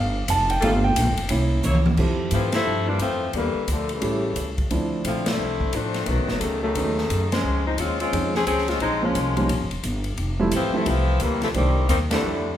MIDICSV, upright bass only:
0, 0, Header, 1, 3, 480
1, 0, Start_track
1, 0, Key_signature, -1, "major"
1, 0, Tempo, 341297
1, 868, Time_signature, 4, 2, 24, 8
1, 17678, End_track
2, 0, Start_track
2, 0, Title_t, "Upright bass"
2, 0, Program_c, 0, 32
2, 0, Note_on_c, 0, 31, 94
2, 384, Note_off_c, 0, 31, 0
2, 402, Note_on_c, 0, 29, 104
2, 859, Note_off_c, 0, 29, 0
2, 875, Note_on_c, 0, 31, 110
2, 1334, Note_off_c, 0, 31, 0
2, 1353, Note_on_c, 0, 34, 102
2, 1510, Note_off_c, 0, 34, 0
2, 1510, Note_on_c, 0, 31, 61
2, 1658, Note_off_c, 0, 31, 0
2, 1666, Note_on_c, 0, 29, 76
2, 1813, Note_off_c, 0, 29, 0
2, 1830, Note_on_c, 0, 36, 108
2, 2290, Note_off_c, 0, 36, 0
2, 2301, Note_on_c, 0, 37, 100
2, 2765, Note_off_c, 0, 37, 0
2, 2779, Note_on_c, 0, 41, 85
2, 3244, Note_off_c, 0, 41, 0
2, 3258, Note_on_c, 0, 44, 88
2, 3723, Note_off_c, 0, 44, 0
2, 3729, Note_on_c, 0, 43, 81
2, 4198, Note_off_c, 0, 43, 0
2, 4221, Note_on_c, 0, 41, 87
2, 4684, Note_off_c, 0, 41, 0
2, 4700, Note_on_c, 0, 40, 90
2, 4978, Note_off_c, 0, 40, 0
2, 5174, Note_on_c, 0, 38, 90
2, 5641, Note_off_c, 0, 38, 0
2, 5655, Note_on_c, 0, 33, 87
2, 6121, Note_off_c, 0, 33, 0
2, 6135, Note_on_c, 0, 37, 83
2, 6601, Note_off_c, 0, 37, 0
2, 6623, Note_on_c, 0, 38, 89
2, 7086, Note_off_c, 0, 38, 0
2, 7102, Note_on_c, 0, 34, 85
2, 7566, Note_off_c, 0, 34, 0
2, 7576, Note_on_c, 0, 36, 78
2, 8042, Note_off_c, 0, 36, 0
2, 8063, Note_on_c, 0, 33, 86
2, 8526, Note_off_c, 0, 33, 0
2, 8542, Note_on_c, 0, 35, 82
2, 8703, Note_off_c, 0, 35, 0
2, 8703, Note_on_c, 0, 33, 53
2, 8847, Note_off_c, 0, 33, 0
2, 8856, Note_on_c, 0, 30, 64
2, 9006, Note_off_c, 0, 30, 0
2, 9016, Note_on_c, 0, 37, 84
2, 9483, Note_off_c, 0, 37, 0
2, 9502, Note_on_c, 0, 39, 81
2, 9967, Note_off_c, 0, 39, 0
2, 9993, Note_on_c, 0, 42, 76
2, 10453, Note_off_c, 0, 42, 0
2, 10468, Note_on_c, 0, 37, 81
2, 10930, Note_off_c, 0, 37, 0
2, 10952, Note_on_c, 0, 39, 81
2, 11413, Note_off_c, 0, 39, 0
2, 11435, Note_on_c, 0, 41, 84
2, 11895, Note_off_c, 0, 41, 0
2, 11910, Note_on_c, 0, 37, 85
2, 12373, Note_off_c, 0, 37, 0
2, 12388, Note_on_c, 0, 34, 85
2, 12852, Note_off_c, 0, 34, 0
2, 12876, Note_on_c, 0, 36, 97
2, 13337, Note_off_c, 0, 36, 0
2, 13346, Note_on_c, 0, 34, 84
2, 13492, Note_off_c, 0, 34, 0
2, 13492, Note_on_c, 0, 31, 59
2, 13644, Note_off_c, 0, 31, 0
2, 13653, Note_on_c, 0, 27, 65
2, 13808, Note_off_c, 0, 27, 0
2, 13828, Note_on_c, 0, 31, 90
2, 14294, Note_off_c, 0, 31, 0
2, 14309, Note_on_c, 0, 29, 86
2, 14775, Note_off_c, 0, 29, 0
2, 14790, Note_on_c, 0, 33, 84
2, 15074, Note_off_c, 0, 33, 0
2, 15275, Note_on_c, 0, 36, 92
2, 15739, Note_off_c, 0, 36, 0
2, 15755, Note_on_c, 0, 38, 86
2, 16220, Note_off_c, 0, 38, 0
2, 16243, Note_on_c, 0, 36, 93
2, 16705, Note_off_c, 0, 36, 0
2, 16722, Note_on_c, 0, 39, 90
2, 17185, Note_off_c, 0, 39, 0
2, 17204, Note_on_c, 0, 41, 90
2, 17667, Note_off_c, 0, 41, 0
2, 17678, End_track
3, 0, Start_track
3, 0, Title_t, "Muted upright bass strokes"
3, 4986, Note_on_c, 9, 29, 38
3, 5127, Note_off_c, 9, 29, 0
3, 15084, Note_on_c, 9, 29, 41
3, 15225, Note_off_c, 9, 29, 0
3, 17678, End_track
0, 0, End_of_file